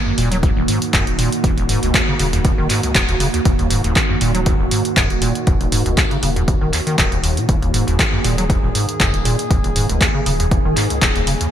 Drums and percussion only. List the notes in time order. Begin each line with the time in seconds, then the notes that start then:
0.18 open hi-hat
0.32 closed hi-hat
0.43 kick, closed hi-hat
0.68 open hi-hat
0.82 closed hi-hat
0.93 kick, clap, closed hi-hat
1.07 closed hi-hat
1.19 open hi-hat
1.32 closed hi-hat
1.44 kick, closed hi-hat
1.58 closed hi-hat
1.69 open hi-hat
1.83 closed hi-hat
1.94 kick, clap, closed hi-hat
2.19 open hi-hat
2.33 closed hi-hat
2.45 kick, closed hi-hat
2.70 clap, open hi-hat
2.83 closed hi-hat
2.95 kick, clap, closed hi-hat
3.09 closed hi-hat
3.20 open hi-hat
3.34 closed hi-hat
3.45 kick, closed hi-hat
3.59 closed hi-hat
3.70 open hi-hat
3.84 closed hi-hat
3.96 kick, clap, closed hi-hat
4.21 open hi-hat
4.35 closed hi-hat
4.46 kick, closed hi-hat
4.71 open hi-hat
4.85 closed hi-hat
4.97 kick, clap, closed hi-hat
5.10 closed hi-hat
5.22 open hi-hat
5.35 closed hi-hat
5.47 kick, closed hi-hat
5.61 closed hi-hat
5.72 open hi-hat
5.86 closed hi-hat
5.97 kick, clap, closed hi-hat
6.11 closed hi-hat
6.23 open hi-hat
6.36 closed hi-hat
6.48 kick, closed hi-hat
6.73 clap, open hi-hat
6.87 closed hi-hat
6.98 kick, clap, closed hi-hat
7.12 closed hi-hat
7.24 open hi-hat
7.37 closed hi-hat
7.49 kick, closed hi-hat
7.63 closed hi-hat
7.74 open hi-hat
7.88 closed hi-hat
7.99 kick, clap, closed hi-hat
8.24 open hi-hat
8.38 closed hi-hat
8.50 kick, closed hi-hat
8.75 open hi-hat
8.89 closed hi-hat
9.00 kick, clap, closed hi-hat
9.14 closed hi-hat
9.25 open hi-hat
9.39 closed hi-hat
9.51 kick, closed hi-hat
9.64 closed hi-hat
9.76 open hi-hat
9.89 closed hi-hat
10.01 kick, clap, closed hi-hat
10.26 open hi-hat
10.40 closed hi-hat
10.51 kick, closed hi-hat
10.77 clap, open hi-hat
10.90 closed hi-hat
11.02 kick, clap, closed hi-hat
11.16 closed hi-hat
11.27 open hi-hat
11.41 closed hi-hat